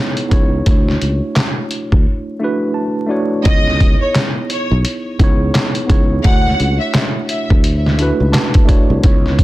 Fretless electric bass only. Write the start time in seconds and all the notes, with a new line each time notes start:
0.32 C#2
0.67 D2
1.02 C#2
1.92 D2
3.46 C#2
4.71 B1
5.20 C#2
5.90 C#2
6.25 D2
6.60 C#2
7.51 D2
8.20 C#2
8.90 C2
9.04 C#2